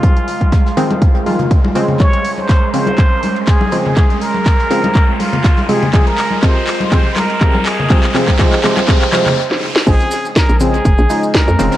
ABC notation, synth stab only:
X:1
M:4/4
L:1/8
Q:"Swing 16ths" 1/4=122
K:Fphr
V:1 name="Synth stab" clef=bass
[E,F,A,C]3 [E,F,A,C] z [E,F,A,F] z [D,F,A,C] | z3 [D,F,A,C] z3 [D,F,A,C] | z3 [D,F,A,C] z3 [C,F,A,C] | [C,F,A,C] z [C,F,A,C] z [C,F,A,C] z [C,F,A,C] z |
[C,F,A,C] [C,F,A,C] [C,F,A,C] [C,F,A,C] [C,F,A,C] [C,F,A,C] z2 | [D,F,A,C]3 [D,F,A,C] z [D,F,A,E] z [D,F,A,C] |]